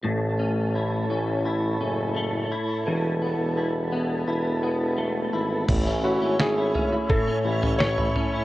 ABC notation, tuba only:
X:1
M:4/4
L:1/16
Q:1/4=85
K:A
V:1 name="Tuba" clef=bass
A,,,6 A,,,4 F,,,4 z2 | E,,,3 E,,,4- E,,, E,,,6 G,,,2 | A,,,3 G,,,4 z3 A,,,4 z2 |]